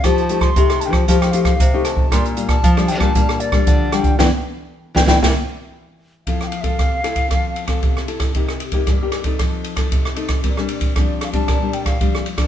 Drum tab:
RD |----------------|----------------|----------------|x-xxx-xxx-xxx-xx|
HH |xxx-xxx-xxxxx-x-|xxxxx-xxx-x-x-xx|----------------|----------------|
SD |r--r-r-r-r-r--r-|r--r-r-r-r-r--r-|o-----ooo-------|-r--r-r-r--r-r-r|
BD |o--oo--oo--oo--o|o--oo--oo--oo--o|o-----ooo-------|o--oo--oo--oo--o|

RD |x-xxx-xxx-xxx-xx|x-xxx-xxx-xxx-xx|
HH |----------------|----------------|
SD |-r--r-r-r--r-r-r|-r--r-r-r--r-r-r|
BD |o--oo--oo--oo--o|o--oo--oo--oo--o|